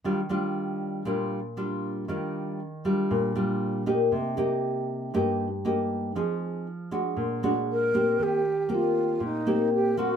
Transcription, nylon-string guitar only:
\new Staff \with { instrumentName = "Nylon-string guitar" } { \time 4/4 \key ees \major \tempo 4 = 118 << { <g d' f'>8 <g d' f'>4. <g d' f'>8 r8 <g d' f'>4 | <g d' f'>4 r8 <g d' f'>4 <g d' f'>4 <bes ees' g'>8~ | <bes ees' g'>8 <bes ees' g'>4. <bes ees' g'>8 r8 <bes ees' g'>4 | <c' ees' aes'>4 r8 <aes d' ges'>4 <aes d' fis'>4 <bes c' g'>8~ |
<bes c' g'>8 r8 <bes c' g'>4. <bes c' g'>4 <bes c' ges'>8 | } \\ { ees2 bes,2 | ees2 bes,2 | c2 g,2 | f2 bes,2 |
ees2 bes,2 | } >> }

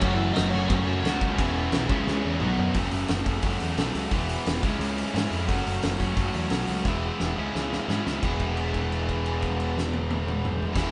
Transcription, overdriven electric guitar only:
\new Staff \with { instrumentName = "Overdriven electric guitar" } { \time 4/4 \key e \major \tempo 4 = 175 <cis' cis''>8 <e e'>8 <dis' dis''>8 <cis' cis''>8 <cis' cis''>2~ | <cis' cis''>2. r4 | r1 | r1 |
r1 | r1 | r1 | r1 | }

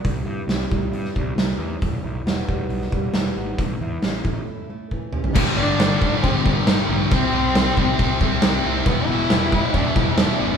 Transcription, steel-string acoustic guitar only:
\new Staff \with { instrumentName = "Steel-string acoustic guitar" } { \time 4/4 \key c \mixolydian \tempo 4 = 136 c8 e'8 c'8 g8 e'8 g8 e8 c'8 | e,8 e'8 b8 g8 e'8 g8 e8 b8 | a,8 e'8 cis'8 a8 e'8 a8 e8 cis'8 | r1 |
r1 | r1 | }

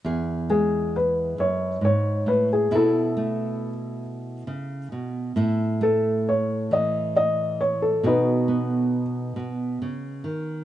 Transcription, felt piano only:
\new Staff \with { instrumentName = "Felt piano" } { \time 6/8 \key e \major \tempo 4. = 45 << { r8 gis'8 b'8 cis''8 cis''8 b'16 gis'16 | a'4 r2 | r8 a'8 cis''8 dis''8 dis''8 cis''16 a'16 | b'4 r2 | } \\ { r2. | e'4. r4. | r2. | dis'4. r4. | } >> }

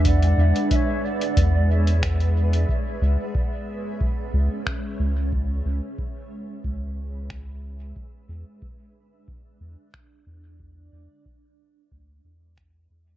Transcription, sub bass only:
\new Staff \with { instrumentName = "Sub bass" } { \clef bass \time 4/4 \key e \mixolydian \tempo 4 = 91 e,8 e,8 r4 e,2 | r8 cis,8 r4. cis,8 r8 cis,8~ | cis,8 cis,8 r4 cis,2 | r8 e,8 r4. e,8 r8 e,8~ |
e,8 e,8 r4 d,8 e,4 e,8 | }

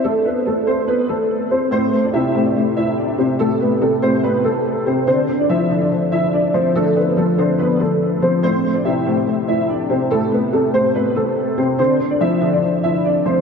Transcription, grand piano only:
\new Staff \with { instrumentName = "Grand piano" } { \time 4/4 \key a \minor \tempo 4 = 143 <a a'>8 <b b'>8 <a a'>8 <c' c''>8 <b b'>8 <a a'>4 <c' c''>8 | <c' c''>8. <d' d''>16 <e' e''>8. <d' d''>16 r8 <e' e''>8 <d' d''>8 <c' c''>8 | <a a'>8 <b b'>8 <a a'>8 <c' c''>8 <b b'>8 <a a'>4 <c' c''>8 | <c' c''>8. <d' d''>16 <e' e''>8. <d' d''>16 r8 <e' e''>8 <d' d''>8 <c' c''>8 |
<a a'>8 <b b'>8 <a a'>8 <c' c''>8 <b b'>8 <a a'>4 <c' c''>8 | <c' c''>8. <d' d''>16 <e' e''>8. <d' d''>16 r8 <e' e''>8 <d' d''>8 <c' c''>8 | <a a'>8 <b b'>8 <a a'>8 <c' c''>8 <b b'>8 <a a'>4 <c' c''>8 | <c' c''>8. <d' d''>16 <e' e''>8. <d' d''>16 r8 <e' e''>8 <d' d''>8 <c' c''>8 | }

